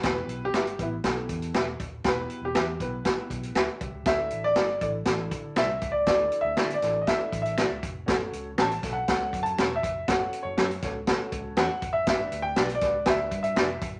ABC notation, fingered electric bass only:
X:1
M:4/4
L:1/16
Q:1/4=120
K:Edor
V:1 name="Fingered electric bass" clef=bass
E,,,2 B,,,2 G,,,2 A,,,2 B,,,2 E,,2 E,,,2 ^D,,,2 | E,,,2 z E,,, E,,2 B,,,2 z2 B,,,2 D,, z =C,, ^C,, | D,,2 A,,,2 G,,,2 A,,,2 A,,,2 D,2 =C,,2 ^C,,2 | D,,2 z D,, D,2 A,,,2 z2 A,,,3 C,, =F,,,2 |
F,,,2 C,,2 A,,,2 B,,,2 C,,2 F,,2 E,,,2 =F,,,2 | F,,,2 z F,,, F,,2 C,,2 z2 C,,2 E,, z =F,,, ^F,,, | G,,,2 D,,2 B,,,2 C,,2 D,,2 G,,2 =F,,,2 ^F,,,2 |]